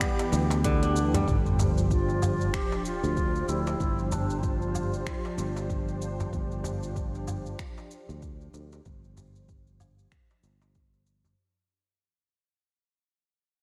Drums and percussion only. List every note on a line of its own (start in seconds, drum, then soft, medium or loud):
0.01 finger snap medium
0.01 kick loud
0.01 closed hi-hat medium
0.01 shaker soft
0.19 closed hi-hat soft
0.19 darbuka ka medium
0.19 darbuka tek medium
0.19 shaker soft
0.32 darbuka ka medium
0.32 shaker medium
0.50 closed hi-hat soft
0.50 darbuka tek medium
0.50 shaker soft
0.64 kick loud
0.64 closed hi-hat medium
0.64 shaker soft
0.83 closed hi-hat soft
0.83 darbuka ka soft
0.83 shaker soft
0.96 darbuka tek soft
0.96 shaker medium
1.14 closed hi-hat soft
1.14 darbuka ka medium
1.14 darbuka dum loud
1.14 shaker soft
1.28 kick loud
1.28 shaker soft
1.46 shaker soft
1.59 darbuka ka medium
1.59 darbuka dum medium
1.59 shaker medium
1.78 shaker soft
1.91 kick medium
1.91 shaker soft
2.09 darbuka tek soft
2.09 shaker soft
2.22 darbuka dum medium
2.22 low woodblock medium
2.22 shaker medium
2.41 shaker soft
2.54 finger snap medium
2.54 kick loud
2.54 shaker soft
2.72 darbuka tek medium
2.72 shaker soft
2.85 shaker medium
3.03 darbuka ka soft
3.03 shaker soft
3.17 kick medium
3.17 shaker soft
3.35 shaker soft
3.49 darbuka ka medium
3.49 shaker medium
3.67 darbuka tek medium
3.67 shaker soft
3.80 kick loud
3.80 shaker soft
3.99 shaker soft
4.12 darbuka ka medium
4.12 darbuka dum loud
4.12 shaker medium
4.30 shaker soft
4.43 kick loud
4.43 shaker soft
4.62 shaker soft
4.75 darbuka dum medium
4.75 low woodblock medium
4.75 shaker medium
4.93 shaker soft
5.07 finger snap medium
5.07 kick loud
5.07 shaker soft
5.25 darbuka ka medium
5.25 darbuka tek medium
5.25 shaker soft
5.38 darbuka ka medium
5.38 shaker medium
5.56 darbuka tek medium
5.56 shaker soft
5.70 kick loud
5.70 shaker soft
5.88 darbuka ka soft
5.88 shaker soft
6.02 shaker medium
6.20 darbuka ka medium
6.20 darbuka dum medium
6.20 shaker soft
6.33 kick loud
6.33 shaker soft
6.52 shaker soft
6.64 darbuka ka medium
6.64 darbuka dum loud
6.64 shaker medium
6.83 shaker soft
6.96 kick loud
6.96 shaker soft
7.15 darbuka tek soft
7.15 shaker soft
7.28 darbuka dum medium
7.28 low woodblock medium
7.28 shaker medium
7.46 shaker soft
7.59 finger snap medium
7.59 kick loud
7.59 shaker soft
7.78 darbuka tek medium
7.78 shaker soft
7.91 shaker medium
8.09 darbuka ka soft
8.09 shaker soft
8.22 kick loud
8.22 shaker soft
8.41 shaker soft
8.54 darbuka ka medium
8.54 shaker medium
8.72 darbuka tek medium
8.72 shaker soft
8.86 kick loud
8.86 shaker soft
9.04 shaker soft
9.17 darbuka ka medium
9.17 darbuka dum medium
9.17 shaker medium
9.36 shaker soft
9.49 kick medium
9.49 shaker soft
9.67 shaker soft
9.80 darbuka dum medium
9.80 low woodblock medium
9.80 shaker medium
9.99 shaker soft
10.12 finger snap medium
10.12 kick loud
10.12 shaker soft
10.30 darbuka ka medium
10.30 darbuka tek medium
10.30 shaker soft
10.43 darbuka ka medium
10.43 shaker medium
10.62 darbuka tek medium
10.62 shaker soft
10.75 kick loud
10.75 shaker soft
10.93 darbuka ka soft
10.93 shaker soft
11.06 darbuka tek soft
11.06 shaker medium
11.24 darbuka ka medium
11.24 darbuka dum medium
11.24 shaker soft